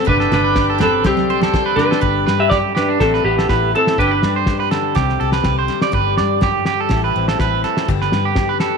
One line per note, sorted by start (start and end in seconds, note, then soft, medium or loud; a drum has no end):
0.05 0.31 G1 medium
0.05 1.01 G2 medium
0.05 1.02 B3 medium
0.05 0.20 B4 medium
0.05 2.02 D5 medium
0.05 2.01 G5 medium
0.05 1.04 B5 medium
0.05 kick medium
0.05 low conga medium
0.09 0.31 D4 medium
0.09 0.32 B4 medium
0.20 0.44 A4 medium
0.20 snare soft
0.31 1.05 G1 medium
0.31 1.03 D4 medium
0.31 0.78 D4 medium
0.31 0.82 B4 medium
0.31 snare medium
0.31 low conga medium
0.44 0.68 B4 medium
0.56 1.03 G4 medium
0.56 kick medium
0.56 snare medium
0.70 0.80 A4 medium
0.78 3.00 D3 medium
0.78 1.04 C4 medium
0.78 1.04 B4 medium
0.78 snare medium
0.78 high conga medium
0.78 low conga medium
0.83 1.05 A4 medium
1.04 1.99 C2 medium
1.04 2.00 C3 medium
1.04 1.78 G3 soft
1.04 1.75 C4 medium
1.04 1.29 D4 soft
1.04 1.76 G4 medium
1.04 2.01 C6 medium
1.04 muted clean electric guitar stroke medium
1.04 kick medium
1.04 snare medium
1.04 high conga medium
1.17 snare soft
1.17 high conga medium
1.30 1.53 D4 medium
1.30 1.42 C5 medium
1.42 1.65 A4 medium
1.42 snare medium
1.42 high conga medium
1.54 2.01 D4 medium
1.54 kick medium
1.54 snare medium
1.66 1.90 B4 medium
1.76 3.99 G3 medium
1.76 2.36 D4 medium
1.76 2.41 B4 medium
1.76 snare soft
1.76 high conga medium
1.76 low conga medium
1.91 2.01 A4 medium
1.91 snare medium
2.01 2.26 G1 medium
2.01 2.51 G2 medium
2.01 2.98 G4 medium
2.01 2.25 B4 medium
2.01 kick medium
2.27 2.97 G2 medium
2.27 2.99 D4 medium
2.27 2.50 B4 medium
2.27 snare medium
2.40 2.49 G4 medium
2.40 2.49 E5 medium
2.50 2.76 F#2 medium
2.50 2.57 G4 medium
2.50 2.74 G4 medium
2.50 2.57 D5 medium
2.50 kick medium
2.50 snare medium
2.75 3.01 G2 soft
2.75 3.00 D4 soft
2.75 2.88 G4 medium
2.75 3.00 B4 medium
2.75 snare medium
2.89 3.12 D4 medium
3.00 3.23 A1 medium
3.00 3.99 A2 medium
3.00 3.24 C4 medium
3.00 3.49 E4 soft
3.00 3.23 A4 medium
3.00 kick medium
3.00 snare medium
3.14 3.37 B4 medium
3.14 snare soft
3.24 3.48 A1 medium
3.24 3.71 B3 medium
3.24 3.71 G4 medium
3.38 3.49 A4 medium
3.38 snare medium
3.49 3.73 A1 medium
3.49 3.99 E4 medium
3.49 3.73 B4 medium
3.49 kick medium
3.49 snare medium
3.75 3.97 E3 medium
3.75 3.98 C4 medium
3.75 3.98 A4 medium
3.75 3.99 A4 medium
3.87 snare medium
3.98 4.22 G1 medium
3.98 4.95 G2 medium
3.98 4.93 D4 medium
3.98 4.11 G4 medium
3.98 4.49 G4 medium
3.98 4.93 B4 medium
3.98 kick medium
4.11 4.35 B4 medium
4.23 4.93 G2 medium
4.23 4.95 D4 medium
4.23 snare medium
4.36 4.59 C5 medium
4.46 4.94 G4 medium
4.46 kick medium
4.46 snare medium
4.60 4.71 B4 medium
4.71 6.91 D3 medium
4.71 4.95 A4 medium
4.71 snare medium
4.95 5.20 C2 medium
4.95 5.91 C3 medium
4.95 5.19 G4 medium
4.95 kick medium
4.95 snare medium
5.09 snare soft
5.20 5.44 C2 medium
5.20 5.43 G4 medium
5.20 5.32 A4 medium
5.32 5.56 B4 medium
5.32 snare medium
5.44 5.68 C2 medium
5.44 5.91 G4 medium
5.44 kick medium
5.44 snare medium
5.59 5.82 C5 medium
5.68 7.88 G3 medium
5.68 snare soft
5.82 5.93 D5 medium
5.82 snare medium
5.92 6.17 G1 medium
5.92 6.41 G2 medium
5.92 6.88 G4 medium
5.92 6.17 B4 medium
5.92 kick medium
6.17 6.89 G2 medium
6.17 6.89 D4 medium
6.17 6.41 D5 medium
6.17 snare medium
6.41 6.66 F#2 medium
6.41 6.65 G4 medium
6.41 kick medium
6.41 snare medium
6.65 6.91 G2 medium
6.65 6.79 G4 medium
6.65 snare medium
6.80 7.03 A4 medium
6.89 7.14 A1 medium
6.89 7.88 A2 medium
6.89 7.40 E4 medium
6.89 kick medium
6.89 snare medium
7.04 7.27 B4 medium
7.16 7.39 A1 medium
7.16 7.86 C4 medium
7.28 7.40 A4 medium
7.28 snare medium
7.39 7.63 A1 medium
7.39 7.90 E4 medium
7.39 7.64 B4 medium
7.39 kick medium
7.39 snare medium
7.64 7.86 E3 medium
7.64 7.88 A4 medium
7.64 snare soft
7.77 snare medium
7.88 8.11 G1 medium
7.88 8.78 G2 medium
7.88 8.59 D3 medium
7.88 8.78 B3 medium
7.88 8.12 D4 medium
7.88 8.38 G4 medium
7.88 muted clean electric guitar stroke medium
7.88 kick medium
8.01 8.25 B4 medium
8.01 snare soft
8.12 8.78 G2 medium
8.12 8.78 D4 medium
8.12 snare medium
8.25 8.49 G4 medium
8.35 8.78 G4 medium
8.35 kick medium
8.35 snare medium
8.49 8.60 B4 medium
8.60 8.78 D3 medium
8.60 8.78 A4 medium
8.60 snare medium